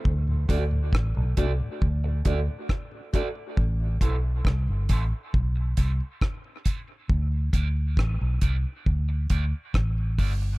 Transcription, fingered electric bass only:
X:1
M:4/4
L:1/16
Q:1/4=68
K:Dmix
V:1 name="Fingered electric bass" clef=bass
D,,2 D,,2 A,,, B,,, C,, z D,,2 D,, z4 z | A,,,2 B,,,2 C,, G,,, A,,, z B,,,2 C,, z4 z | D,,2 D,,2 A,,, B,,, C,, z D,,2 D,, z A,,,2 G,,,2 |]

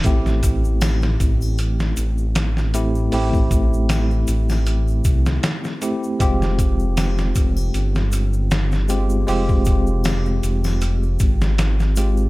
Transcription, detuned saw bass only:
X:1
M:4/4
L:1/8
Q:"Swing 16ths" 1/4=78
K:Am
V:1 name="Detuned saw bass" clef=bass
A,,,3 A,,,2 A,,,3 | A,,,3 A,,,2 C,, z2 | F,,,3 F,,, G,,,4 | F,,,3 F,,,2 _A,,,3 |]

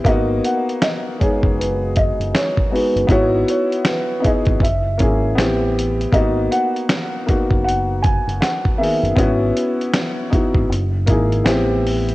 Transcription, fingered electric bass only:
X:1
M:4/4
L:1/16
Q:"Swing 16ths" 1/4=79
K:G#m
V:1 name="Fingered electric bass" clef=bass
G,,,2 z4 z F,,,4 F,,, z3 F,,, | G,,,2 z4 z G,,, F,,,2 G,,,2 =A,,,4 | G,,,2 z4 z F,,,4 F,,, z3 F,,, | G,,,2 z4 z G,,, F,,,2 G,,,2 =A,,,4 |]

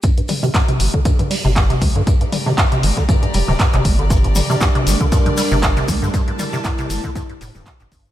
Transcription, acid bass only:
X:1
M:4/4
L:1/16
Q:"Swing 16ths" 1/4=118
K:C
V:1 name="Acid bass" clef=bass
G,, G,, G, C, G,, C, _B, D, G,, G,, G, C, G,, C, B, D, | G,, G,, G, C, G,, C, _B, D, G,, G,, G, C, G,, C, B, D, | G,, G,, G, C, G,, C, _B, D, G,, G,, G, C, G,, C, B, D, | G,, G,, G, C, G,, C, _B, D, G,, G,, A,, G,, C, G,, G,, A,, |]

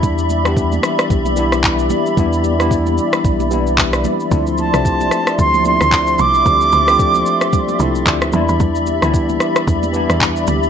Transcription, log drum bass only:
X:1
M:4/4
L:1/16
Q:"Swing 16ths" 1/4=112
K:Ephr
V:1 name="Log drum bass" clef=bass
z16 | z16 | D,,3 C,,3 z2 D,,3 D,,3 C,,2 | D,,2 D,,4 z4 C,,2 D,,2 E,, E,, |
E,,3 D,,3 z2 E,,3 E,,3 D,,2 |]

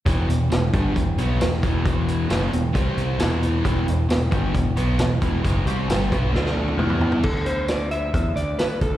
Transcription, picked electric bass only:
X:1
M:4/4
L:1/8
Q:1/4=134
K:Em
V:1 name="Picked electric bass" clef=bass
E,,, E,,, E,,, G,,, E,,, B,,, E,,, E,,,- | E,,,2 F,,, E,,, C,,2 E,,,2 | E,,, E,,, E,,, G,,, E,,, B,,, E,,, E,,, | F,,, C,, G,,, B,,, D,,2 E,,2 |
D,,4 E,, D,, z D,, |]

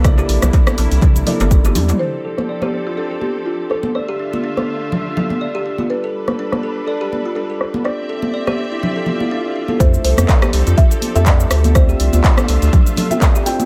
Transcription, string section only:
X:1
M:4/4
L:1/8
Q:"Swing 16ths" 1/4=123
K:Ddor
V:1 name="String section"
[C,G,DE]8 | [F,CGA]8 | [D,A,Fe]8 | [G,DAB]8 |
[CGde]8 | [F,CGA]8 | [D,A,Fe]8 |]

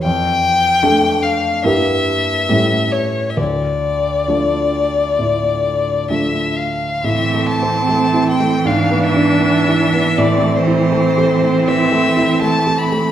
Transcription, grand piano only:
X:1
M:4/4
L:1/8
Q:1/4=76
K:Dm
V:1 name="Grand piano"
F,,2 [A,DA]2 [G,,B,EG]2 [A,,A,^CG]2 | D,,2 [A,DF]2 A,,2 [A,DF]2 | [K:Am] (3A,, A, C (3A, E A, (3^G,, B, D (3B, E B, | (3A,, A, E (3A, A A, (3E, A, E (3A, A A, |]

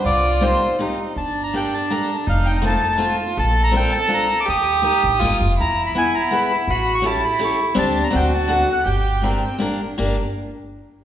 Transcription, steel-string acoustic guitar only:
X:1
M:3/4
L:1/8
Q:1/4=163
K:Cm
V:1 name="Steel-string acoustic guitar"
z2 [B,CEG] z [B,CEG] z | [K:Gm] z2 [B,DGA] z [B,DGA] z | z2 [A,CFA] z [A,CFA] z | z2 [CDFB] z [CDFB] z |
z2 [B,EGB] z [B,EGB] z | z2 [=B,=E^G=B] z [B,EGB] z | z2 [^C=EGA] z [CEGA] z | [CDGA]2 [CD^FA] z [CDFA] z |
z2 [B,DGB] z [B,DGB] z | [B,DGB] z4 z |]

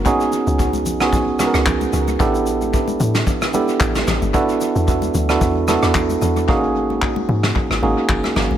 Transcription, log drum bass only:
X:1
M:4/4
L:1/16
Q:"Swing 16ths" 1/4=112
K:Elyd
V:1 name="Log drum bass" clef=bass
z3 C,,3 B,,,2 C,,3 C,,3 C,,2 | =A,,,6 =A,,2 z4 A,,,2 A,,, =G,,, | z3 E,,3 =D,,2 E,,3 E,,3 E,,2 | G,,,6 G,,2 z G,,, G,,, z F,,, z G,,, G,,, |]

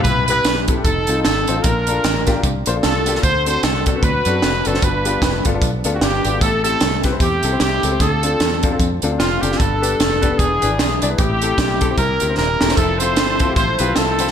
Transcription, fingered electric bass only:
X:1
M:4/4
L:1/8
Q:"Swing" 1/4=151
K:C
V:1 name="Fingered electric bass" clef=bass
C,,2 B,,,2 F,,, C,, _A,,, =A,,, | _B,,,2 A,,,2 C,, B,,, C,,2 | D,,2 C,,2 D,, ^F,, =F,,, ^F,,, | G,,,2 F,,, G,,, B,,, D,, G,,, _A,,, |
A,,,2 C,,2 E,, C,, C,, _D,, | D,,2 E,,2 F,, D,, F,,, ^F,,, | G,,,2 F,,,2 E,,, ^G,,, B,,, C,, | A,,,2 B,,,2 C,, D,, _E,,, =E,,, |
F,,,2 G,,,2 A,,, B,,, C,,2 |]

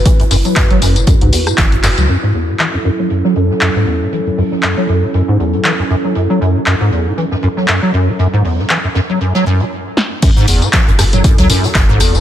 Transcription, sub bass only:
X:1
M:4/4
L:1/16
Q:"Swing 16ths" 1/4=118
K:F#m
V:1 name="Sub bass" clef=bass
z2 F,,, z2 F,,,3 z C,, z2 F,,,3 C,, | z16 | z16 | z16 |
z16 | z2 F,,, z2 F,,,3 z C,, z2 F,,,3 F,,, |]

